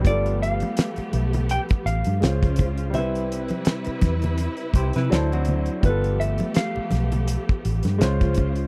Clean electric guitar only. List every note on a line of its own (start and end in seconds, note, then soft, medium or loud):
0.07 0.39 D5 medium
0.42 1.16 F5 medium
1.16 1.51 E5 medium
1.51 1.61 G5 loud
1.86 2.94 F5 loud
2.95 4.35 E5 medium
5.86 6.21 B4 loud
6.20 6.56 E5 medium
6.56 8.67 F5 medium